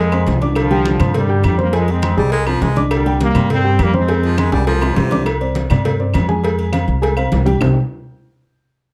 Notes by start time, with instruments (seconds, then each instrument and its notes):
Already playing: upright bass F2, trombone section F3 G#3
0.12 upright piano C4 C5 C6, high conga, high timbale, low agogo, claves
0.27 upright bass C2, cowbell, high conga, low timbale
0.41 upright piano D4 D5 D6, high conga, low timbale, low agogo
0.55 trombone section D3 F3, cowbell, high conga, low agogo, claves
0.71 upright piano G3 G4 G5, high conga, low agogo
0.85 cowbell, high conga, low timbale
1.00 upright bass G2, upright piano C4 C5 C6, cowbell, high conga, low conga, low agogo, claves
1.14 trombone section D3 G3, cowbell, high conga, low conga, low agogo
1.29 upright piano G4 G5 G6, high conga
1.44 upright bass F2, trombone section D3 G3, cowbell, high conga, low timbale, low agogo, claves
1.58 trombone section G3 A#3, upright piano C4 C5 C6, high conga
1.73 trombone section F3 G#3, upright piano G#3 G#4 G#5, cowbell, high conga, low agogo
1.88 trombone section G#3 C4, high conga, low agogo
2.02 upright piano C4 C5 C6, cowbell, high conga, low timbale, low agogo, claves
2.17 upright bass C2, baritone saxophone G3, upright piano G#3 G#4 G#5, high conga
2.32 baritone saxophone G#3, cowbell, high conga, low agogo
2.47 baritone saxophone F3, upright piano C4 C5 C6, high conga, low agogo, claves
2.61 upright bass C2, baritone saxophone G#3, cowbell, high conga, low timbale
2.76 upright piano D4 D5 D6, high conga, low agogo
2.91 trombone section D3 G3, cowbell, low agogo, claves
3.06 upright piano G3 G4 G5, high conga, low agogo
3.21 trombone section G3 A#3, cowbell, high conga, low timbale
3.35 upright bass G2, upright piano C4 C5 C6, cowbell, high conga, low conga, low agogo, claves
3.50 trombone section G3 C4, cowbell, high conga, low conga, low agogo
3.64 upright piano G4 G5 G6, high conga
3.79 upright bass F2, trombone section G3 A#3, cowbell, high conga, low timbale, low agogo, claves
3.94 trombone section G#3 C4, upright piano C4 C5 C6, high conga
4.08 upright piano G#3 G#4 G#5, cowbell, high conga, low agogo
4.23 baritone saxophone F3, high conga, low agogo
4.37 baritone saxophone G#3, upright piano C4 C5 C6, cowbell, high conga, high timbale, low agogo, claves
4.52 upright bass C2, baritone saxophone G3, upright piano G#3 G#4 G#5, high conga, high timbale
4.67 baritone saxophone F3, cowbell, high conga, low timbale, low agogo
4.81 upright piano C4 C5 C6, high bongo, high conga, low timbale, low agogo, claves
4.96 upright bass C2, baritone saxophone C3, cowbell, low bongo, high conga, low timbale
5.11 upright piano D4 D5 D6, low bongo, high conga, low timbale, low agogo
5.26 cowbell, high conga, low agogo, claves
5.41 upright piano C4 C5 D5, high conga, low agogo
5.55 cowbell, high conga, low timbale
5.70 upright bass G2, upright piano C4 C5 D5, cowbell, high conga, low conga, low agogo, claves
5.85 cowbell, high conga, low conga, low agogo
5.99 upright piano C4 C5 D5, high conga
6.14 upright bass F2, cowbell, high conga, low timbale, low agogo, claves
6.28 upright piano G#3 G#4 G#5, high conga
6.43 upright piano G#3 G#4 G#5, cowbell, high conga, low agogo
6.58 high conga, low agogo
6.72 upright piano C4 C5 F5, cowbell, high conga, low timbale, low agogo, claves
6.88 upright bass C2, high conga
7.01 upright piano G#3 G#4 G#5, cowbell, high conga, low agogo
7.16 upright piano C4 C5 F5, high conga, low agogo, claves
7.32 upright bass C2, cowbell, high conga, low timbale
7.46 upright piano G3 G4 G5, high conga, low agogo
7.61 upright bass C2, upright piano C3 G3 C4 D#4 G4 C5, low bongo, low conga, low timbale, claves